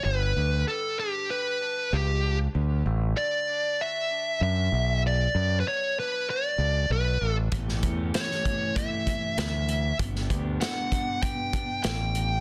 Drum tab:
HH |----------------|----------------|----------------|x-x-x-x-x-x-x-x-|
SD |----------------|----------------|----------------|-o--oo------o---|
BD |----------------|----------------|----------------|o-o---o-o-o-----|

HH |x-x-x-x-x-x-x-x-|
SD |-o--o-------o---|
BD |o-o---o-o-o-----|